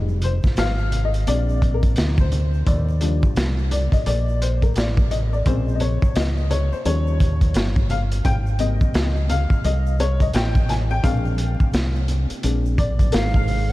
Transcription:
Already playing: fingered electric bass F1, upright piano G3 G#3 D#4
0.09 high conga, shaker
0.21 upright piano C5, closed hi-hat, low conga, shaker
0.43 kick, snare, shaker
0.56 fingered electric bass G#1, upright piano F5, snare, closed hi-hat, shaker
0.78 shaker
0.92 closed hi-hat, low conga, shaker
1.05 upright piano D#5
1.14 closed hi-hat, shaker
1.27 fingered electric bass A#1, upright piano G#3 C4 D4 D5, closed hi-hat, high conga, shaker
1.49 shaker
1.62 kick, closed hi-hat, shaker
1.74 upright piano A#4
1.83 kick, closed hi-hat, high conga, shaker
1.96 fingered electric bass D2, snare, closed hi-hat, shaker
2.18 upright piano C5, kick, high conga, shaker
2.32 closed hi-hat, low conga, shaker
2.53 shaker
2.67 fingered electric bass D#2, upright piano D5, kick, closed hi-hat, shaker
2.89 shaker
3.01 upright piano F3 G3 D4, closed hi-hat, high conga, low conga, shaker
3.23 kick, shaker
3.36 fingered electric bass C2, snare, closed hi-hat, shaker
3.58 shaker
3.71 upright piano D5, closed hi-hat, low conga, shaker
3.92 upright piano D#5, kick, closed hi-hat, shaker
4.06 fingered electric bass A#1, upright piano D5, closed hi-hat, high conga, shaker
4.29 shaker
4.42 upright piano C5, closed hi-hat, shaker
4.62 upright piano A#4, kick, closed hi-hat, high conga, shaker
4.76 fingered electric bass A1, upright piano D5, snare, closed hi-hat, shaker
4.97 kick, shaker
5.11 upright piano D#5, closed hi-hat, low conga, shaker
5.33 upright piano D5, shaker
5.46 fingered electric bass A#1, upright piano C#3 G#3 C4 C5, kick, closed hi-hat, shaker
5.68 shaker
5.75 upright piano D#5
5.80 upright piano C#5, closed hi-hat, high conga, low conga, shaker
6.02 kick, shaker
6.15 fingered electric bass C#2, upright piano D#5, snare, closed hi-hat, shaker
6.37 shaker
6.50 upright piano C#5, closed hi-hat, low conga, shaker
6.72 upright piano C5, muted fingered electric bass stroke, shaker
6.85 fingered electric bass D#2, upright piano F3 G3 C#4 C#5, closed hi-hat, high conga, shaker
7.07 shaker
7.20 kick, closed hi-hat, shaker
7.41 kick, closed hi-hat, high conga, shaker
7.54 fingered electric bass G1, snare, closed hi-hat, shaker
7.76 kick, shaker
7.89 upright piano F5, closed hi-hat, low conga, shaker
8.11 closed hi-hat, shaker
8.25 fingered electric bass G#1, upright piano G5, kick, closed hi-hat, shaker
8.46 shaker
8.59 upright piano G3 A#3 C4 D#5, closed hi-hat, high conga, low conga, shaker
8.81 muted fingered electric bass stroke, kick, shaker
8.94 fingered electric bass C#2, snare, closed hi-hat, shaker
9.16 shaker
9.29 upright piano F5, closed hi-hat, low conga, shaker
9.50 muted fingered electric bass stroke, kick, shaker
9.64 fingered electric bass C2, upright piano D#5, closed hi-hat, high conga, shaker
9.86 shaker
9.99 upright piano C#5, closed hi-hat, shaker
10.20 upright piano D#5, kick, closed hi-hat, high conga, shaker
10.33 fingered electric bass A1, upright piano G5, snare, closed hi-hat, shaker
10.55 kick, shaker
10.69 upright piano G#5, snare, closed hi-hat, low conga, shaker
10.90 upright piano G5, shaker
11.03 fingered electric bass A#1, upright piano G#3 C4 D4 F5, kick, closed hi-hat, shaker
11.25 high conga, shaker
11.38 closed hi-hat, shaker
11.60 kick, shaker
11.73 fingered electric bass C2, snare, closed hi-hat, shaker
11.95 shaker
12.08 closed hi-hat, low conga, shaker
12.30 closed hi-hat, shaker
12.43 fingered electric bass A#1, upright piano G#3 C4 D4, closed hi-hat, high conga, shaker
12.66 shaker
12.78 upright piano D5, kick, closed hi-hat, shaker
12.99 kick, closed hi-hat, high conga, shaker
13.12 fingered electric bass G#1, trombone G#2, upright piano A#4, flute F5, snare, closed hi-hat, shaker
13.34 upright piano F5, kick, shaker
13.48 open hi-hat, low conga, shaker

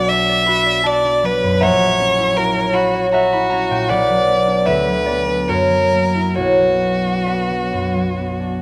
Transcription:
Already playing: harp B1 F#3 F#4 F#5 B5 C#6 D6, violin D5
0.09 harp D4, violin E5
0.29 harp D5
0.46 harp F#4 B5
0.66 harp D5
0.83 harp F#4 A5, violin D5
1.05 harp D4
1.23 harp F#3, violin B4
1.43 harp F#2
1.60 harp A#1 E5 F#5 A#5, violin C#5
1.80 harp F#3
1.99 harp C#4
2.18 harp E4
2.37 harp F#4, violin A#4
2.56 harp C#5
2.73 violin F#4, harp F#4 B5
2.94 harp C#5
3.12 violin F#4, harp F#4 E5 F#5 A#5
3.33 harp E4 B5
3.50 harp C#4 A#5
3.71 harp A#2 G5
3.89 harp B1 B4 D5 F#5, violin D5
4.09 harp F#3
4.28 harp B3
4.47 harp D4
4.65 harp D2 E5, violin B4
4.87 harp F#3
5.06 harp B3 D5
5.28 harp D4
5.48 harp F#2 F#4 A#4 C#5, violin A#4
5.70 harp F#3
5.92 harp A#3
6.15 harp E4
6.34 harp B1 F#4 C#5, violin F#4
6.60 harp F#3
6.83 harp B3
7.05 harp D4
7.26 harp B3 D4 F#4 B4
7.51 harp F#3
7.73 harp F#2
7.95 harp F#3
8.17 harp B3
8.40 harp D4

